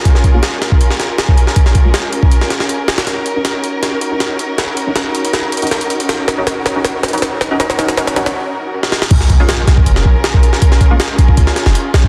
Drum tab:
CC |--------------------------------|--------------------------------|--------------------------------|--------------------------------|
HH |x---x---x---x---x---x---x---x---|x---x---x---x---x---x---x---x-x-|x---x---x---x---x---x---x---x---|x---x---x---x-x-x---xxxxx-x-x-x-|
SD |--o-----o---o-----o-o---o-----o-|--o-----o---------o-o-o-----o-o-|o-------o-------o-------o-------|o-------o-------o-------o-------|
BD |o---o---------o-----------o-----|o---o---------o-----------------|--------------------------------|--------------------------------|

CC |--------------------------------|--------------------------------|x-------------------------------|--------------------------------|
HH |x---x---x---x---x---xxxxx-------|x---x-x-x-x-x-------------------|x---x---x---x---x-------x---x---|x---x---x---x---x---x---x---x---|
SD |o---o---o---o---o---o---o---o---|o-o-o-o-o-o-o-o-----------o-o-o-|--o-----o---o-----o-----o-----o-|--o-----o---------o-o-o-----o---|
BD |--------------------------------|--------------------------------|o---o---------o-----------o-----|o---o---------o---------------o-|